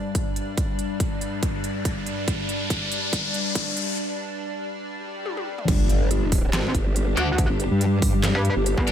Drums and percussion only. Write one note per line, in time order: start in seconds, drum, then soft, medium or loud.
0.15 kick medium
0.15 closed hi-hat medium
0.36 closed hi-hat medium
0.57 kick medium
0.57 closed hi-hat medium
0.79 closed hi-hat soft
1.00 kick medium
1.00 closed hi-hat medium
1.21 closed hi-hat soft
1.43 kick medium
1.43 closed hi-hat medium
1.64 closed hi-hat medium
1.85 kick loud
1.85 closed hi-hat medium
2.06 closed hi-hat medium
2.28 kick loud
2.28 closed hi-hat medium
2.49 closed hi-hat soft
2.70 kick loud
2.70 closed hi-hat medium
2.92 closed hi-hat soft
3.13 kick loud
3.13 closed hi-hat medium
3.34 closed hi-hat medium
3.55 kick loud
3.55 closed hi-hat medium
3.77 closed hi-hat medium
5.26 high tom medium
5.37 high tom medium
5.58 mid tom medium
5.68 kick loud
5.68 closed hi-hat medium
5.68 crash loud
5.89 closed hi-hat medium
6.11 closed hi-hat medium
6.32 kick loud
6.32 open hi-hat medium
6.53 snare loud
6.53 clap medium
6.53 closed hi-hat medium
6.75 kick medium
6.75 closed hi-hat medium
6.96 closed hi-hat medium
7.17 closed hi-hat medium
7.38 kick loud
7.38 closed hi-hat medium
7.60 closed hi-hat medium
7.81 closed hi-hat medium
8.02 kick loud
8.02 open hi-hat medium
8.23 snare loud
8.23 clap medium
8.23 closed hi-hat medium
8.45 closed hi-hat medium
8.66 closed hi-hat medium
8.78 kick medium
8.87 closed hi-hat medium